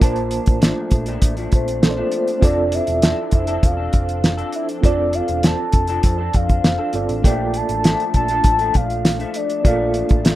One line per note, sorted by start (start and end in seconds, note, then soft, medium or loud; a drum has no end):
0.00 0.38 A#1 medium
0.00 0.60 A#2 medium
0.00 2.38 F3 medium
0.00 0.62 F3 medium
0.00 1.77 A#3 medium
0.00 10.35 D4 medium
0.00 0.63 D4 medium
0.00 1.78 F4 medium
0.00 0.63 A#4 medium
0.00 1.79 A5 medium
0.00 kick loud
0.00 closed hi-hat medium
0.04 1.80 C5 medium
0.16 closed hi-hat soft
0.31 closed hi-hat medium
0.46 0.71 A1 medium
0.46 kick medium
0.46 closed hi-hat medium
0.61 1.07 A#2 medium
0.61 1.07 F3 medium
0.61 1.07 A3 medium
0.61 1.07 D4 medium
0.61 snare loud
0.61 closed hi-hat loud
0.91 1.16 A#1 medium
0.91 kick medium
0.91 closed hi-hat medium
1.06 1.38 A#2 medium
1.06 1.38 F3 medium
1.06 1.37 A3 medium
1.06 1.36 D4 medium
1.06 closed hi-hat soft
1.22 1.46 A1 medium
1.22 kick medium
1.22 closed hi-hat medium
1.37 1.99 F3 soft
1.37 1.97 A3 soft
1.37 1.97 D4 soft
1.37 closed hi-hat soft
1.52 2.01 A#1 medium
1.52 2.46 C5 medium
1.52 kick medium
1.52 closed hi-hat medium
1.68 closed hi-hat soft
1.81 2.42 A#3 soft
1.81 2.40 F4 soft
1.81 2.42 A4 soft
1.81 1.89 C5 soft
1.81 snare loud
1.81 closed hi-hat medium
1.91 2.43 D5 medium
1.97 2.40 F3 soft
1.97 2.41 A3 soft
1.97 2.41 D4 medium
2.12 closed hi-hat medium
2.28 closed hi-hat soft
2.40 2.78 F1 medium
2.40 3.02 F3 medium
2.40 7.20 F3 medium
2.40 4.78 C4 medium
2.40 3.02 C4 medium
2.40 3.03 D4 medium
2.40 4.79 F4 medium
2.40 3.04 A4 medium
2.40 7.20 A4 medium
2.40 4.79 A4 medium
2.40 kick loud
2.40 closed hi-hat medium
2.45 4.80 D5 medium
2.45 2.76 D5 loud
2.72 3.34 E5 loud
2.72 closed hi-hat medium
2.87 3.12 E1 medium
2.87 closed hi-hat medium
3.02 3.48 F3 medium
3.02 3.47 C4 medium
3.02 3.47 D4 medium
3.02 3.46 A4 medium
3.02 snare loud
3.02 closed hi-hat loud
3.31 3.56 F1 loud
3.31 3.67 E5 loud
3.31 kick medium
3.31 closed hi-hat medium
3.47 3.78 F3 soft
3.47 3.78 C4 medium
3.47 3.77 D4 medium
3.47 3.76 A4 medium
3.47 closed hi-hat soft
3.63 3.87 E1 medium
3.63 4.54 F5 loud
3.63 kick medium
3.63 closed hi-hat loud
3.77 4.38 C4 soft
3.77 4.38 D4 soft
3.77 4.37 A4 medium
3.93 4.41 F1 medium
3.93 kick medium
3.93 closed hi-hat medium
4.09 closed hi-hat soft
4.24 snare medium
4.24 closed hi-hat medium
4.37 4.83 C4 soft
4.37 4.83 D4 soft
4.37 4.83 A4 medium
4.37 closed hi-hat soft
4.52 4.68 E5 loud
4.52 closed hi-hat medium
4.69 closed hi-hat soft
4.81 5.19 F1 medium
4.81 5.43 F3 medium
4.81 6.89 C4 medium
4.81 5.43 C4 medium
4.81 5.44 D4 medium
4.81 6.90 F4 medium
4.81 6.91 A4 medium
4.81 5.45 A4 medium
4.81 5.16 D5 loud
4.81 kick loud
4.81 closed hi-hat medium
4.86 6.91 D5 medium
5.13 5.46 F5 loud
5.13 closed hi-hat medium
5.28 5.53 E1 medium
5.28 closed hi-hat medium
5.43 5.89 F3 medium
5.43 5.88 C4 medium
5.43 5.88 D4 medium
5.43 5.87 A4 medium
5.43 6.37 A5 loud
5.43 snare loud
5.43 closed hi-hat medium
5.72 5.98 F1 medium
5.72 kick medium
5.72 closed hi-hat medium
5.87 6.19 F3 soft
5.87 6.19 C4 medium
5.87 6.18 D4 medium
5.87 6.17 A4 medium
5.87 closed hi-hat soft
6.03 6.28 F2 medium
6.03 kick medium
6.03 closed hi-hat loud
6.18 6.79 C4 soft
6.18 6.79 D4 soft
6.18 6.78 A4 soft
6.33 6.58 F2 medium
6.33 7.25 F5 loud
6.33 kick medium
6.33 closed hi-hat medium
6.49 kick medium
6.49 closed hi-hat soft
6.64 6.76 F1 medium
6.64 snare loud
6.64 closed hi-hat medium
6.78 7.25 C4 soft
6.78 7.24 D4 soft
6.78 7.24 A4 soft
6.93 7.06 G1 medium
6.93 7.24 C4 soft
6.93 7.22 F4 soft
6.93 7.24 A4 soft
6.93 7.25 D5 medium
6.93 closed hi-hat medium
7.09 7.21 A1 medium
7.09 closed hi-hat soft
7.22 7.60 A#1 loud
7.22 7.82 A#2 medium
7.22 10.35 F3 medium
7.22 7.84 F3 medium
7.22 7.85 A3 medium
7.22 9.60 A#3 medium
7.22 7.85 D4 medium
7.22 9.61 F4 medium
7.22 10.35 A4 medium
7.22 9.62 A4 medium
7.22 7.58 G5 loud
7.22 kick loud
7.22 closed hi-hat medium
7.27 9.63 D5 medium
7.54 8.15 A5 loud
7.54 closed hi-hat medium
7.69 7.93 A1 medium
7.69 closed hi-hat medium
7.83 8.29 A#2 medium
7.83 8.30 F3 medium
7.83 8.29 A3 medium
7.83 8.29 D4 medium
7.83 snare loud
7.83 closed hi-hat loud
8.00 closed hi-hat soft
8.14 8.38 A#1 medium
8.14 8.77 A5 loud
8.14 kick medium
8.14 closed hi-hat medium
8.28 8.61 A#2 medium
8.28 8.60 F3 medium
8.28 8.59 A3 medium
8.28 8.58 D4 medium
8.28 closed hi-hat soft
8.44 8.69 A1 medium
8.44 kick medium
8.44 closed hi-hat loud
8.59 9.21 F3 soft
8.59 9.20 A3 medium
8.59 9.19 D4 soft
8.59 closed hi-hat soft
8.74 9.23 A#1 medium
8.74 9.37 F5 loud
8.74 kick medium
8.74 closed hi-hat medium
8.90 closed hi-hat soft
9.05 snare loud
9.05 closed hi-hat medium
9.19 9.64 F3 soft
9.19 9.64 A3 soft
9.19 9.65 D4 medium
9.19 closed hi-hat soft
9.34 10.26 D5 medium
9.34 closed hi-hat medium
9.50 closed hi-hat soft
9.62 10.01 A#1 medium
9.62 10.23 A#2 medium
9.62 10.25 F3 medium
9.62 10.26 A3 medium
9.62 10.35 A#3 medium
9.62 10.26 D4 medium
9.62 10.35 F4 medium
9.62 10.35 A4 medium
9.62 kick loud
9.62 closed hi-hat medium
9.67 10.35 F5 medium
9.94 closed hi-hat medium
10.09 10.35 A1 medium
10.09 kick loud
10.09 closed hi-hat medium
10.24 10.35 A#2 medium
10.24 10.35 F3 medium
10.24 10.35 A3 medium
10.24 10.35 D4 medium
10.24 snare loud
10.24 closed hi-hat loud